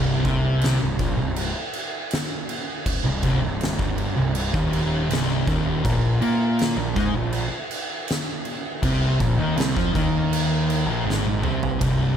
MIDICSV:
0, 0, Header, 1, 4, 480
1, 0, Start_track
1, 0, Tempo, 745342
1, 1840, Time_signature, 4, 2, 24, 8
1, 7837, End_track
2, 0, Start_track
2, 0, Title_t, "Distorted electric guitar"
2, 0, Program_c, 0, 30
2, 0, Note_on_c, 0, 36, 104
2, 155, Note_off_c, 0, 36, 0
2, 163, Note_on_c, 0, 48, 108
2, 514, Note_off_c, 0, 48, 0
2, 528, Note_on_c, 0, 36, 68
2, 637, Note_off_c, 0, 36, 0
2, 640, Note_on_c, 0, 46, 100
2, 752, Note_off_c, 0, 46, 0
2, 763, Note_on_c, 0, 36, 74
2, 953, Note_off_c, 0, 36, 0
2, 1964, Note_on_c, 0, 36, 72
2, 2075, Note_off_c, 0, 36, 0
2, 2082, Note_on_c, 0, 36, 113
2, 2194, Note_off_c, 0, 36, 0
2, 2203, Note_on_c, 0, 36, 76
2, 2394, Note_off_c, 0, 36, 0
2, 2436, Note_on_c, 0, 43, 106
2, 2671, Note_off_c, 0, 43, 0
2, 2681, Note_on_c, 0, 36, 72
2, 2873, Note_off_c, 0, 36, 0
2, 2922, Note_on_c, 0, 39, 101
2, 3274, Note_off_c, 0, 39, 0
2, 3284, Note_on_c, 0, 36, 107
2, 3516, Note_off_c, 0, 36, 0
2, 3526, Note_on_c, 0, 39, 108
2, 3757, Note_off_c, 0, 39, 0
2, 3769, Note_on_c, 0, 46, 100
2, 3999, Note_off_c, 0, 46, 0
2, 4003, Note_on_c, 0, 58, 107
2, 4356, Note_off_c, 0, 58, 0
2, 4363, Note_on_c, 0, 46, 74
2, 4480, Note_on_c, 0, 56, 117
2, 4483, Note_off_c, 0, 46, 0
2, 4594, Note_off_c, 0, 56, 0
2, 4605, Note_on_c, 0, 46, 71
2, 4796, Note_off_c, 0, 46, 0
2, 5688, Note_on_c, 0, 48, 110
2, 5918, Note_off_c, 0, 48, 0
2, 5928, Note_on_c, 0, 46, 120
2, 6038, Note_off_c, 0, 46, 0
2, 6043, Note_on_c, 0, 51, 104
2, 6155, Note_off_c, 0, 51, 0
2, 6174, Note_on_c, 0, 48, 94
2, 6281, Note_off_c, 0, 48, 0
2, 6283, Note_on_c, 0, 53, 102
2, 6395, Note_off_c, 0, 53, 0
2, 6408, Note_on_c, 0, 51, 115
2, 6997, Note_off_c, 0, 51, 0
2, 7008, Note_on_c, 0, 46, 97
2, 7117, Note_off_c, 0, 46, 0
2, 7125, Note_on_c, 0, 44, 92
2, 7355, Note_off_c, 0, 44, 0
2, 7361, Note_on_c, 0, 48, 109
2, 7593, Note_off_c, 0, 48, 0
2, 7595, Note_on_c, 0, 36, 105
2, 7837, Note_off_c, 0, 36, 0
2, 7837, End_track
3, 0, Start_track
3, 0, Title_t, "Picked electric bass"
3, 0, Program_c, 1, 34
3, 0, Note_on_c, 1, 24, 93
3, 141, Note_off_c, 1, 24, 0
3, 161, Note_on_c, 1, 36, 99
3, 495, Note_off_c, 1, 36, 0
3, 528, Note_on_c, 1, 24, 88
3, 635, Note_off_c, 1, 24, 0
3, 638, Note_on_c, 1, 34, 96
3, 750, Note_off_c, 1, 34, 0
3, 758, Note_on_c, 1, 24, 88
3, 982, Note_off_c, 1, 24, 0
3, 1962, Note_on_c, 1, 24, 89
3, 2073, Note_off_c, 1, 24, 0
3, 2083, Note_on_c, 1, 24, 107
3, 2193, Note_off_c, 1, 24, 0
3, 2200, Note_on_c, 1, 24, 81
3, 2424, Note_off_c, 1, 24, 0
3, 2443, Note_on_c, 1, 31, 104
3, 2665, Note_off_c, 1, 31, 0
3, 2686, Note_on_c, 1, 24, 88
3, 2907, Note_off_c, 1, 24, 0
3, 2920, Note_on_c, 1, 27, 99
3, 3256, Note_off_c, 1, 27, 0
3, 3280, Note_on_c, 1, 24, 97
3, 3504, Note_off_c, 1, 24, 0
3, 3520, Note_on_c, 1, 27, 110
3, 3744, Note_off_c, 1, 27, 0
3, 3765, Note_on_c, 1, 34, 104
3, 3987, Note_off_c, 1, 34, 0
3, 3994, Note_on_c, 1, 46, 99
3, 4333, Note_off_c, 1, 46, 0
3, 4354, Note_on_c, 1, 34, 91
3, 4469, Note_off_c, 1, 34, 0
3, 4483, Note_on_c, 1, 44, 104
3, 4594, Note_off_c, 1, 44, 0
3, 4601, Note_on_c, 1, 34, 92
3, 4825, Note_off_c, 1, 34, 0
3, 5681, Note_on_c, 1, 36, 94
3, 5905, Note_off_c, 1, 36, 0
3, 5926, Note_on_c, 1, 34, 109
3, 6034, Note_off_c, 1, 34, 0
3, 6038, Note_on_c, 1, 39, 101
3, 6151, Note_off_c, 1, 39, 0
3, 6157, Note_on_c, 1, 36, 114
3, 6271, Note_off_c, 1, 36, 0
3, 6287, Note_on_c, 1, 41, 94
3, 6396, Note_off_c, 1, 41, 0
3, 6407, Note_on_c, 1, 39, 93
3, 6978, Note_off_c, 1, 39, 0
3, 6995, Note_on_c, 1, 34, 100
3, 7110, Note_off_c, 1, 34, 0
3, 7116, Note_on_c, 1, 32, 95
3, 7341, Note_off_c, 1, 32, 0
3, 7353, Note_on_c, 1, 36, 91
3, 7580, Note_off_c, 1, 36, 0
3, 7604, Note_on_c, 1, 24, 88
3, 7837, Note_off_c, 1, 24, 0
3, 7837, End_track
4, 0, Start_track
4, 0, Title_t, "Drums"
4, 161, Note_on_c, 9, 36, 110
4, 162, Note_on_c, 9, 49, 54
4, 225, Note_off_c, 9, 36, 0
4, 226, Note_off_c, 9, 49, 0
4, 396, Note_on_c, 9, 49, 76
4, 414, Note_on_c, 9, 38, 112
4, 461, Note_off_c, 9, 49, 0
4, 479, Note_off_c, 9, 38, 0
4, 638, Note_on_c, 9, 49, 63
4, 640, Note_on_c, 9, 36, 113
4, 703, Note_off_c, 9, 49, 0
4, 704, Note_off_c, 9, 36, 0
4, 878, Note_on_c, 9, 49, 81
4, 942, Note_off_c, 9, 49, 0
4, 1117, Note_on_c, 9, 49, 68
4, 1181, Note_off_c, 9, 49, 0
4, 1357, Note_on_c, 9, 49, 88
4, 1375, Note_on_c, 9, 38, 119
4, 1421, Note_off_c, 9, 49, 0
4, 1439, Note_off_c, 9, 38, 0
4, 1603, Note_on_c, 9, 49, 72
4, 1668, Note_off_c, 9, 49, 0
4, 1842, Note_on_c, 9, 36, 109
4, 1842, Note_on_c, 9, 49, 93
4, 1906, Note_off_c, 9, 49, 0
4, 1907, Note_off_c, 9, 36, 0
4, 2079, Note_on_c, 9, 49, 63
4, 2082, Note_on_c, 9, 36, 100
4, 2143, Note_off_c, 9, 49, 0
4, 2147, Note_off_c, 9, 36, 0
4, 2323, Note_on_c, 9, 49, 71
4, 2341, Note_on_c, 9, 38, 98
4, 2387, Note_off_c, 9, 49, 0
4, 2405, Note_off_c, 9, 38, 0
4, 2443, Note_on_c, 9, 36, 109
4, 2507, Note_off_c, 9, 36, 0
4, 2562, Note_on_c, 9, 49, 57
4, 2627, Note_off_c, 9, 49, 0
4, 2800, Note_on_c, 9, 49, 87
4, 2865, Note_off_c, 9, 49, 0
4, 2924, Note_on_c, 9, 36, 112
4, 2989, Note_off_c, 9, 36, 0
4, 3047, Note_on_c, 9, 49, 71
4, 3111, Note_off_c, 9, 49, 0
4, 3288, Note_on_c, 9, 49, 83
4, 3306, Note_on_c, 9, 38, 119
4, 3353, Note_off_c, 9, 49, 0
4, 3371, Note_off_c, 9, 38, 0
4, 3526, Note_on_c, 9, 36, 113
4, 3527, Note_on_c, 9, 49, 62
4, 3590, Note_off_c, 9, 36, 0
4, 3591, Note_off_c, 9, 49, 0
4, 3766, Note_on_c, 9, 36, 126
4, 3768, Note_on_c, 9, 49, 84
4, 3831, Note_off_c, 9, 36, 0
4, 3833, Note_off_c, 9, 49, 0
4, 4005, Note_on_c, 9, 49, 52
4, 4069, Note_off_c, 9, 49, 0
4, 4243, Note_on_c, 9, 49, 75
4, 4261, Note_on_c, 9, 38, 118
4, 4308, Note_off_c, 9, 49, 0
4, 4326, Note_off_c, 9, 38, 0
4, 4484, Note_on_c, 9, 36, 112
4, 4484, Note_on_c, 9, 49, 55
4, 4548, Note_off_c, 9, 49, 0
4, 4549, Note_off_c, 9, 36, 0
4, 4718, Note_on_c, 9, 49, 72
4, 4782, Note_off_c, 9, 49, 0
4, 4964, Note_on_c, 9, 49, 73
4, 5028, Note_off_c, 9, 49, 0
4, 5202, Note_on_c, 9, 49, 83
4, 5220, Note_on_c, 9, 38, 112
4, 5267, Note_off_c, 9, 49, 0
4, 5285, Note_off_c, 9, 38, 0
4, 5442, Note_on_c, 9, 49, 64
4, 5506, Note_off_c, 9, 49, 0
4, 5685, Note_on_c, 9, 49, 95
4, 5686, Note_on_c, 9, 36, 125
4, 5749, Note_off_c, 9, 49, 0
4, 5750, Note_off_c, 9, 36, 0
4, 5925, Note_on_c, 9, 49, 64
4, 5927, Note_on_c, 9, 36, 97
4, 5990, Note_off_c, 9, 49, 0
4, 5991, Note_off_c, 9, 36, 0
4, 6166, Note_on_c, 9, 49, 84
4, 6184, Note_on_c, 9, 38, 101
4, 6231, Note_off_c, 9, 49, 0
4, 6249, Note_off_c, 9, 38, 0
4, 6289, Note_on_c, 9, 36, 106
4, 6353, Note_off_c, 9, 36, 0
4, 6409, Note_on_c, 9, 36, 105
4, 6413, Note_on_c, 9, 49, 66
4, 6474, Note_off_c, 9, 36, 0
4, 6477, Note_off_c, 9, 49, 0
4, 6651, Note_on_c, 9, 49, 88
4, 6716, Note_off_c, 9, 49, 0
4, 6890, Note_on_c, 9, 49, 73
4, 6954, Note_off_c, 9, 49, 0
4, 7150, Note_on_c, 9, 38, 66
4, 7214, Note_off_c, 9, 38, 0
4, 7248, Note_on_c, 9, 48, 67
4, 7313, Note_off_c, 9, 48, 0
4, 7364, Note_on_c, 9, 45, 94
4, 7428, Note_off_c, 9, 45, 0
4, 7489, Note_on_c, 9, 43, 88
4, 7553, Note_off_c, 9, 43, 0
4, 7607, Note_on_c, 9, 36, 115
4, 7607, Note_on_c, 9, 51, 85
4, 7671, Note_off_c, 9, 36, 0
4, 7671, Note_off_c, 9, 51, 0
4, 7837, End_track
0, 0, End_of_file